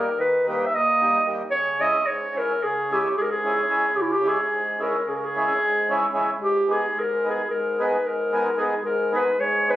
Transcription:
Already playing: A#4
0.17 D#3 B4
0.47 G3 A#3 D#4 G4 B4
0.66 E5
0.74 A#2 D#5
1.01 G3 A#3 D#4 G4
1.25 G3 A#3 D#4 G4
1.51 C#3 C#5
1.80 G#3 C#4 E4 G#4 D#5
2.05 G#2 C#5
2.34 G#3 C#4 E4 G#4 A#4
2.61 C#3 G#4
2.90 G#3 C#4 E4 G4 G#4
3.17 G#2 G#4
3.22 A#4
3.31 G#4
3.43 G#3 C#4 E4 G#4
3.68 G#3 C#4 E4 G#4
3.94 C#3 G4
4.02 E4
4.12 G4
4.23 G#3 C#4 E4 G#4
4.28 G#4
4.49 G#2
4.79 G#3 C#4 E4 G#4 A#4
5.05 C#3 G#4
5.16 A#4
5.24 G#4
5.35 G#3 C#4 E4 G#4
5.62 G#2
5.90 G#3 C#4 E4 G#4
6.13 G#3 C#4 E4 G#4
6.38 G#2 G4
6.68 G#3 B3 D#4 G#4
6.93 G#2
6.99 A#4
7.24 G#3 B3 D#4 G#4
7.29 G#4
7.48 G#2 A#4
7.78 G#3 B3 D#4 G#4 B4
8.05 G#2 A#4
8.32 G#3 B3 D#4 G#4
8.56 G#3 B3 D#4 G#4
8.82 G#2 A#4
9.12 G#3 B3 D#4 G#4 B4
9.38 G#2 C#5
9.68 G#3 B3 D#4 G#4 B4

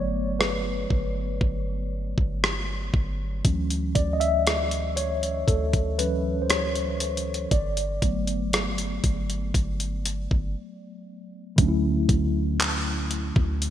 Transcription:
Already playing: G1 F#3 A3 B3 C#5 D5
0.39 B4, cross-stick
0.90 G1, kick
1.41 G1, kick
2.18 G1, kick
2.44 cross-stick
2.94 G1, kick
3.45 D2 E3 F#3 C#4, kick, closed hi-hat
3.70 closed hi-hat
3.95 D2 D5, kick, closed hi-hat
4.13 D#5
4.20 E5, closed hi-hat
4.47 cross-stick, closed hi-hat
4.71 closed hi-hat
4.96 C#5, closed hi-hat
5.23 closed hi-hat
5.47 D2 A4, kick, closed hi-hat
5.73 kick, closed hi-hat
5.99 E3 F#3 C#4 B4, closed hi-hat
6.42 C5
6.50 C#5, cross-stick, closed hi-hat
6.75 closed hi-hat
7.00 closed hi-hat
7.17 closed hi-hat
7.34 closed hi-hat
7.51 G1 D5, kick, closed hi-hat
7.77 closed hi-hat
8.02 G1 F#3 A3 B3, kick, closed hi-hat
8.27 closed hi-hat
8.53 cross-stick, closed hi-hat
8.78 closed hi-hat
9.04 G1, kick, closed hi-hat
9.30 closed hi-hat
9.54 G1, kick, closed hi-hat
9.80 closed hi-hat
10.05 closed hi-hat
10.31 G1, kick
11.56 D2 D3 F#3 A3, kick, closed hi-hat
11.61 C#4 D4
11.68 E4
12.09 D2, kick, closed hi-hat
12.60 clap, closed hi-hat
13.11 closed hi-hat
13.36 D2, kick
13.62 closed hi-hat

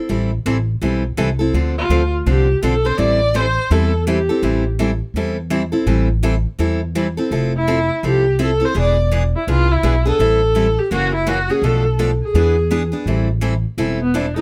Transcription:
0.09 A1 E3 G3 C4 E4 A4
0.46 A1 E3 G3 C4 E4 A4
0.82 B1 E3 G3 C4 E4 A4
1.17 C2 E3 G3 C4 E4 A4
1.39 C4 E4 A4
1.53 D2 D3 F3 C4 D4 A4
1.78 F4
1.89 D2 D3 F3 C4 D4 A4
2.26 C2 D3 F3 C4 D4 G4 A4
2.63 B1 D3 F3 C4 D4 A4
2.85 C4 D4 A4 C5
2.98 A1 E3 G3 C4 E4 A4 D5
3.34 E3 G3 C4 E4 A4 C5
3.70 E2 E3 G3 C4 E4 A4
4.07 E3 G3 C4 E4 G4 A4
4.29 C4 E4 A4
4.42 A1 E3 G3 C4 E4 A4
4.79 E3 G3 C4 E4 A4
5.14 E2 E3 G3 C4 E4 A4
5.50 E3 G3 C4 E4 A4
5.72 C4 E4 A4
5.86 A1 E3 G3 C4 E4 A4
6.23 E3 G3 C4 E4 A4
6.59 E2 E3 G3 C4 E4 A4
6.95 E3 G3 C4 E4 A4
7.17 C4 E4 A4
7.31 F1 F3 C4 E4 A4
7.57 E4
7.67 F3 C4 E4 A4
8.03 C2 F3 C4 E4 G4 A4
8.39 F3 C4 E4 A4
8.43 A4
8.60 C4 E4 A4
8.65 C5
8.74 E1 E3 B3 D4 G#4
8.80 D5
9.11 E3 B3 D4 G#4
9.36 E4
9.47 C2 E3 B3 D4 F4 G#4
9.71 E4
9.83 B1 E3 B3 D4 G#4
10.06 B3 D4 G#4 A4
10.19 A1 E3 G3 C4 E4 A4
10.55 E3 G3 C4 E4 A4
10.78 G4
10.91 F#1 C#3 E3 A#3 C#4 F#4
11.15 E4
11.27 C#3 E3 A#3 C#4 F#4
11.50 A#3 C#4 F#4 G#4
11.62 B1 B2 F3 A3 D4 A4
11.99 B2 F3 A3 D4 A4
12.23 G#4
12.34 E2 E3 B3 D4 G#4
12.71 E3 B3 D4 G#4
12.92 B3 D4 G#4
13.06 A1 E3 G3 C4 E4 A4
13.41 E3 G3 C4 E4 A4
13.78 E1 E3 G3 C4 E4 A4
14.02 B3
14.14 E3 G3 C4 D4 E4 A4
14.36 C4 D#4 E4 A4

